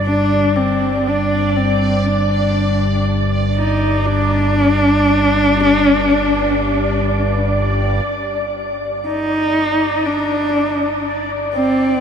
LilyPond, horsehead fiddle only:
\new Staff \with { instrumentName = "Horsehead fiddle" } { \time 4/4 \key c \minor \tempo 4 = 60 d'8 c'8 d'8 c'8 d'4 r8 ees'8 | d'2.~ d'8 r8 | r4 ees'4 d'4 r8 c'8 | }